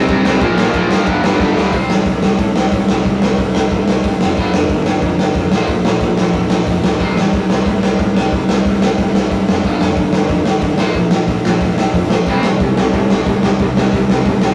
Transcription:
0.08 G2 C3 G3 C4, kick, ride
0.25 C2 C3 G3 C4, snare
0.41 A#1 A#2 F3 A#3, kick, ride
0.57 A#2 F3 A#3, snare
0.74 A#1 A#2 F3 A#3, kick, ride
0.91 G2 A#2 F3 A#3, snare
1.07 G1 G2 D3 G3, kick, ride
1.24 G2 D3 G3, snare
1.40 G1 G2 D3 G3, kick, snare
1.57 D2 G2 D3 G3, snare
1.72 C2 C3 G3 C4, kick, open hi-hat
1.90 A1 C3 G3, snare
2.06 C2 C3 G3, kick, open hi-hat
2.22 C2 C3 G3, snare
2.39 A2 C3 G3, kick, open hi-hat
2.56 C2 C3 G3, snare
2.72 A2 C3 G3, kick, open hi-hat
2.89 C2 C3 G3, snare
3.05 C2 C3 G3, kick, open hi-hat
3.22 C2 C3 G3, snare
3.38 C2 C3 G3, kick, open hi-hat
3.55 C2 C3 G3, snare
3.71 G1 C3 G3, kick, open hi-hat
3.88 C2 C3 G3, snare
4.04 G2 C3 G3, kick, open hi-hat
4.21 F1 C3 G3, snare
4.37 G1 G2 D3 G3, kick, open hi-hat
4.54 F1 G2 D3, snare
4.69 G1 G2 D3, kick, open hi-hat
4.86 G1 G2 D3, snare
5.02 F2 G2, kick, open hi-hat
5.06 D3
5.19 G1 G2 D3, snare
5.34 F2 G2 D3, kick, open hi-hat
5.52 A#1 A#2 F3 A#3, snare
5.67 A#1 A#2 F3, kick, open hi-hat
5.85 A#1 A#2 F3, snare
6.00 A#1 A#2 F3, kick, open hi-hat
6.17 A#1 A#2 F3, snare
6.33 F1 A#2 F3, kick, open hi-hat
6.49 A#1 A#2 F3, snare
6.66 F2 A#2 F3, kick, open hi-hat
6.83 D2 A#2 F3, snare
6.99 C2 C3 G3 C4, kick, open hi-hat
7.16 A1 C3 G3, snare
7.33 C2 C3 G3, kick, open hi-hat
7.49 C2 C3 G3, snare
7.66 A2 C3 G3, kick, open hi-hat
7.81 C2 C3 G3, snare
7.98 A2 C3 G3, kick, open hi-hat
8.15 C2 C3 G3, snare
8.31 C2 C3 G3, kick, open hi-hat
8.48 C2 C3 G3, snare
8.65 C2 C3 G3, kick, open hi-hat
8.80 C2 C3 G3, snare
8.98 G1 C3 G3, kick, open hi-hat
9.14 C2 C3 G3, snare
9.30 G2 C3 G3, kick, open hi-hat
9.49 F1 C3 G3, snare
9.64 G1 G2 D3 G3, kick, open hi-hat
9.81 F1 G2 D3, snare
9.96 G1 G2 D3, kick, open hi-hat
10.13 G1 G2 D3, snare
10.29 F2 G2 D3, kick, open hi-hat
10.45 G1 G2 D3, snare
10.61 A1 G2 D3, kick, open hi-hat
10.78 A#1 A#2 F3 A#3, snare
10.94 A#1 A#2 F3, kick, open hi-hat
11.11 A#1 A#2 F3, snare
11.28 A#1 A#2 F3, kick, open hi-hat
11.44 A#1 A#2 F3, snare
11.61 F1 A#2 F3, kick, open hi-hat
11.77 A#1 A#2 F3, snare
11.94 F2 A#2 F3, kick, open hi-hat
12.10 A#1 A#2 F3, snare
12.26 C2 C3 G3 C4, kick, open hi-hat
12.43 A1 C3 G3, snare
12.60 C2 C3 G3, kick, open hi-hat
12.77 C2 C3 G3, snare
12.94 A2 C3 G3, kick, open hi-hat
13.10 C2 C3 G3, snare
13.26 A2 C3 G3, kick, open hi-hat
13.43 C2 C3 G3, snare
13.59 C2 C3 G3, kick, open hi-hat
13.77 C2 C3 G3, snare
13.93 C2 C3 G3, kick, open hi-hat
14.09 C2 C3 G3, snare
14.25 G1 C3 G3, kick, open hi-hat
14.42 C2 C3 G3, snare

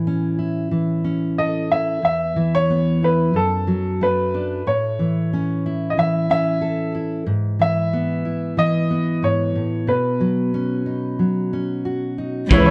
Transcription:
Already playing: A2 E3 E4
0.07 C#4
0.39 E4
0.71 E3
1.04 C#4
1.38 A4 D#5
1.71 E4 E5
2.02 E2 E5
2.36 E3
2.55 C#5
2.70 B3
3.03 E4 B4
3.34 F#2 A4
3.67 F#3
4.01 A3 B4
4.34 D4
4.67 A2 C#5
4.99 E3
5.33 C#4
5.66 E4
5.90 D#5
5.97 E3 E5
6.30 C#4 E5
6.61 A4
6.95 E4
7.26 G#2
7.59 E3 E5
7.93 B3
8.25 E4
8.57 E3 D#5
8.90 B3
9.22 G#2 C#5
9.55 A2
9.87 B2 B4
10.20 F#3
10.54 C#4
10.86 D#4
11.19 F#3
11.53 C#4
11.85 F#4
12.18 D#4
12.50 C#2 C#3 E3 E4 G#4 C#5 B5 E6, kick, closed hi-hat
12.58 B4
12.66 C#5

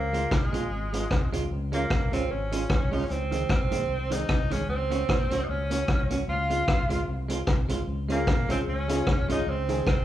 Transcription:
Already playing: C#2 A#3
0.13 G#3 C4 F4, closed hi-hat
0.31 C2 G#3, kick, cross-stick
0.53 A#1 G#3 C4 F4, closed hi-hat
0.71 G#1
0.93 G#3 C4 F4, closed hi-hat
1.11 C2, kick, cross-stick
1.33 C#2 G#3 C4 F4, closed hi-hat
1.51 C#2
1.72 G#3 A#3 C#4 F4, closed hi-hat
1.90 C2, kick, cross-stick
2.12 C#2 G#3 C4 C#4 F4, closed hi-hat
2.30 G#1 C#4
2.52 G#3 C#4 F4, closed hi-hat
2.70 C2, kick, cross-stick
2.92 G#3 C#4 D#4 F4, open hi-hat
3.04 C#4
3.10 C#2 C4, hi-hat pedal
3.31 D#3 G#3 C4, closed hi-hat
3.49 C2 C4, kick, cross-stick
3.71 A#1 D#3 G#3 C4, closed hi-hat
3.89 C2
4.10 D#3 G#3 C4 D#4, closed hi-hat
4.29 C2, kick, cross-stick
4.50 D#3 G#3 C4 C#4, closed hi-hat
4.68 C#2 C4
4.90 A#3 C#4 F#4, closed hi-hat
5.09 A#1, kick, cross-stick
5.30 C2 A#3 C#4 F#4, closed hi-hat
5.44 D#4
5.49 C#2 C#4
5.71 A#3 C#4 F#4, closed hi-hat
5.88 C2, kick, cross-stick
6.11 A#3 C#4 F#4, closed hi-hat
6.28 C#2 F4
6.50 G#3 C4 F4, closed hi-hat
6.68 C2, kick, cross-stick
6.89 C#2 G#3 C4 F4, closed hi-hat
7.08 C2
7.29 G#3 C4 F4, closed hi-hat
7.47 C2, kick, cross-stick
7.69 G#3 C4 F4, closed hi-hat
7.87 C#2
8.08 G#3 A#3 C#4 F4 G#4, closed hi-hat
8.27 A#1, kick, cross-stick
8.49 C2 G#3 C4 C#4 F4 G#4, closed hi-hat
8.67 C#2 C#4
8.88 G#3 C#4 F4 G#4, closed hi-hat
9.07 C2, kick, cross-stick
9.29 G#3 C#4 D#4 F4 G#4, closed hi-hat
9.46 C#2 C4
9.69 D#3 G#3 C4 D#4 G#4, closed hi-hat
9.87 C2 C4, kick, cross-stick

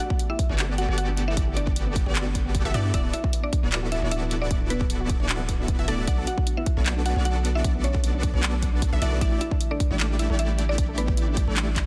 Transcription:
Already playing: A3 B3
0.00 F#4 F#5
0.10 B3, kick
0.19 closed hi-hat
0.30 E4 G4 E5
0.39 B3, kick, closed hi-hat
0.49 G1 B3 D4 F#4 G4 A4 D5
0.59 D4, clap, closed hi-hat
0.69 B3
0.78 F#4 F#5, closed hi-hat
0.89 G1 B3 F#4 G4 A4 D5
0.98 B3 F#4 F#5, closed hi-hat
1.08 D4
1.17 D4, closed hi-hat
1.28 B3 E4 E5
1.37 G1 B3 F#4 G4 A4 D5, kick, closed hi-hat
1.47 G4
1.57 B3 D4 D5, closed hi-hat
1.67 D4, kick
1.76 D4, closed hi-hat
1.87 B3
1.96 kick, closed hi-hat
2.06 G1 B3 F#4 G4 A4 D5
2.15 B3, clap, closed hi-hat
2.26 D4
2.35 D4, kick, closed hi-hat
2.45 B3
2.55 kick, closed hi-hat
2.65 G1 B3 F#4 G4 A4 E5
2.74 G2 B3 E4 F#4 G4 A4 D5 E5, closed hi-hat
2.85 D4
2.94 D1 E3 B3 D4 E4 F#4 A4 D5 E5, kick, closed hi-hat
3.04 B3
3.13 E4 E5, closed hi-hat
3.24 F#4, kick
3.33 B3, closed hi-hat
3.44 D4 D5
3.53 D4, kick, closed hi-hat
3.63 D1 B3 E4 F#4 A4 D5
3.72 clap, closed hi-hat
3.83 F#4
3.92 B3 E4 E5, closed hi-hat
4.02 D1 B3 D4 E4 F#4 A4 D5
4.11 D4 E4 E5, closed hi-hat
4.22 B3
4.31 closed hi-hat
4.41 D4 F#4 D5
4.51 D1 B3 E4 F#4 A4 D5, kick, closed hi-hat
4.61 D4
4.70 B3 D4 B4, closed hi-hat
4.81 B3, kick
4.90 closed hi-hat
5.00 F#4
5.10 B3, kick, closed hi-hat
5.20 D1 B3 D4 E4 F#4 A4 D5
5.29 D4, clap, closed hi-hat
5.40 B3
5.49 kick, closed hi-hat
5.59 D4
5.68 B3, kick, closed hi-hat
5.79 D1 B3 E4 F#4 A4 E5
5.88 D1 A3 B3 D4 E4 F#4 A4 D5, closed hi-hat
5.98 F#4
6.08 B1 D3 A3 B3 D4 F#4 A4 D5 F#5, kick, closed hi-hat
6.18 A4
6.27 B3 F#4 F#5, closed hi-hat
6.38 D4, kick
6.47 D4, closed hi-hat
6.57 B3 E4 E5
6.66 kick, closed hi-hat
6.77 B1 B3 D4 F#4 A4 D5
6.86 B3, clap, closed hi-hat
6.96 D4
7.06 D4 F#4 F#5, closed hi-hat
7.16 B1 B3 D4 F#4 A4 D5
7.25 F#4 F#5, closed hi-hat
7.36 A4
7.45 B3, closed hi-hat
7.55 D4 E4 E5
7.64 B1 B3 D4 F#4 A4 D5, kick, closed hi-hat
7.75 B3
7.84 C#4 C#5, closed hi-hat
7.94 A4, kick
8.04 B3, closed hi-hat
8.14 D4
8.23 D4, kick, closed hi-hat
8.34 B1 B3 D4 F#4 A4 D5
8.43 clap, closed hi-hat
8.53 A4
8.62 B3, kick, closed hi-hat
8.73 D4
8.82 D4, kick, closed hi-hat
8.92 B1 B3 D4 F#4 A4 E5
9.02 B1 B3 D4 E4 F#4 A4 D5 E5, closed hi-hat
9.12 A4
9.21 A1 G3 A3 D4 E4 G4 D5 E5, kick, closed hi-hat
9.32 E4
9.41 E4 E5, closed hi-hat
9.51 D4, kick
9.61 closed hi-hat
9.71 D4 A4 D5
9.80 D4, kick, closed hi-hat
9.91 A1 A3 D4 E4 G4 D5
10.00 E4, clap, closed hi-hat
10.10 D4
10.19 E4 E5, closed hi-hat
10.30 A1 A3 D4 E4 G4 A4 D5
10.39 D4 E4 E5, closed hi-hat
10.49 E4
10.59 E4, closed hi-hat
10.69 D4 D5
10.78 A1 A3 D4 E4 G4 D5, kick, closed hi-hat
10.89 A4
10.98 B3 D4 B4, closed hi-hat
11.08 E4, kick
11.17 E4, closed hi-hat
11.28 D4
11.37 kick, closed hi-hat
11.47 A1 A3 D4 E4 G4 A4 D5
11.57 D4, clap, closed hi-hat
11.67 E4
11.76 E4, kick, clap, closed hi-hat

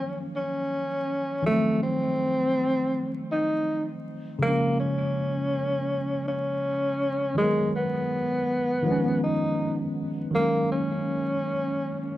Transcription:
Already playing: D#3 F3 F#3 A#3 C#4
0.36 C#4
1.42 D#3 F3
1.46 F#3 A3
1.51 C4
1.83 C4
3.32 D#4
4.39 C#3 F3 A#3
4.43 G#3 A#3
4.48 C#4
4.80 C#4
6.28 C#4
7.35 D#3 F#3 G#3
7.39 G#3 A#4
7.44 B3
7.76 B3
8.82 D#3 F3
8.87 G#3 B3
8.91 C#4
9.23 D#4
10.31 D#3 F#3 A#3
10.35 G#3 A#3
10.40 C#4
10.72 C#4

